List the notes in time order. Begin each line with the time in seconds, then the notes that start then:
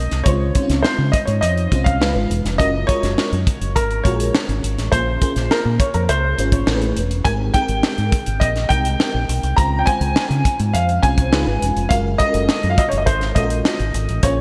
Already playing: G#3 C4 D#4 G4 A#4 D#5
0.11 C2, snare, closed hi-hat
0.24 C#2 G#3 C4 C#4 F4 C5 C#5, kick, closed hi-hat
0.55 G#3 C4 C#4 D#4 C5, kick, closed hi-hat
0.62 F4
0.70 C#2, snare, closed hi-hat
0.82 C5, snare
0.98 C#3
1.12 D#5, kick, closed hi-hat
1.25 G#2 C#5, closed hi-hat
1.41 F2 D#5, closed hi-hat
1.57 closed hi-hat
1.71 C2 G#3 C4 C#4 F4 C5, kick, closed hi-hat
1.84 F5, kick, closed hi-hat
2.00 C#2 G#3 C#4 D#4 F4 B4, snare
2.15 G#1
2.30 E1, closed hi-hat
2.45 F1, snare, closed hi-hat
2.58 F#1 G#3 C#4 F4 F#4 A#4 D#5, kick, closed hi-hat
2.87 G#3 C#4 F4 F#4 A#4 C#5, kick, closed hi-hat
3.03 F#1, snare, closed hi-hat
3.18 muted fingered electric bass stroke, snare
3.33 F#2, closed hi-hat
3.47 kick, closed hi-hat
3.61 F#1, closed hi-hat
3.76 G#1 A#4, kick, closed hi-hat
3.91 closed hi-hat
4.04 A#1 G#3 C#4 F4 F#4 G#4 C#5, kick, closed hi-hat
4.12 A#4
4.20 closed hi-hat
4.35 snare
4.49 G#1, closed hi-hat
4.63 G#1, closed hi-hat
4.78 A1, snare, closed hi-hat
4.92 A#1 A#3 C#4 F4 G#4 C5, kick, closed hi-hat
5.21 A#3 C#4 F4 G#4 C5, kick, closed hi-hat
5.36 A#1, snare, closed hi-hat
5.51 A#4, snare
5.65 A#2
5.80 C#5, kick, closed hi-hat
5.94 F2 A#4, closed hi-hat
6.09 C#2 C5, closed hi-hat
6.38 G#1 A#3 C#4 F4 G#4 C5, closed hi-hat
6.52 C#5, kick, closed hi-hat
6.66 A1 A3 C#4 E4 G#4 A#4, snare
6.74 B4
6.82 closed hi-hat
6.97 E1, closed hi-hat
7.11 closed hi-hat
7.24 G#1 G#3 C4 D#4 G4 A#4 G#5, kick, closed hi-hat
7.54 G#3 C4 D#4 G4 G#4 G5, kick, closed hi-hat
7.61 A#4
7.68 G#1, closed hi-hat
7.83 snare
7.98 G#2, closed hi-hat
8.12 kick, closed hi-hat
8.26 G#1, closed hi-hat
8.40 A#1 D#5, kick, closed hi-hat
8.56 snare, closed hi-hat
8.69 C2 G#3 C4 D#4 G4 A#4 G5, kick, closed hi-hat
8.85 closed hi-hat
9.00 snare
9.15 A#1
9.29 B1, closed hi-hat
9.43 C2, closed hi-hat
9.56 C#2 G#3 C4 C#4 F4 C5 A#5, kick, closed hi-hat
9.79 G5
9.86 G#3 C4 C#4 F4 C5 G#5, kick, closed hi-hat
10.01 C#2, closed hi-hat
10.16 muted fingered electric bass stroke, snare
10.30 C#3, closed hi-hat
10.45 kick, closed hi-hat
10.60 G#2, closed hi-hat
10.73 F2 F5, closed hi-hat
10.89 closed hi-hat
11.03 C2 G#3 C4 C#4 F4 C5 G#5, kick, closed hi-hat
11.18 kick, closed hi-hat
11.32 C#2 G#3 C#4 D#4 F4 B4, snare
11.47 G#1
11.62 E1, closed hi-hat
11.76 F1, closed hi-hat
11.89 F#1 G#3 C#4 F4 F#4 A#4 F5, kick, closed hi-hat
12.18 G#3 C#4 F4 F#4 A4 D#5, kick, closed hi-hat
12.26 A#4
12.34 F#1, closed hi-hat
12.49 snare
12.63 F#2, closed hi-hat
12.70 F5
12.78 D#5, kick, closed hi-hat
12.89 C#5, closed hi-hat
12.93 F#1
12.98 D#5
13.06 G#1 C5, kick, closed hi-hat
13.21 snare, closed hi-hat
13.35 A#1 G#3 C#4 F4 F#4 A4 D#5, kick, closed hi-hat
13.43 A#4
13.50 closed hi-hat
13.65 snare
13.80 G#1, closed hi-hat
13.94 G#1, closed hi-hat
14.09 A1, closed hi-hat
14.23 A#1 A#3 C#4 F4 G#4 C5 C#5, kick, closed hi-hat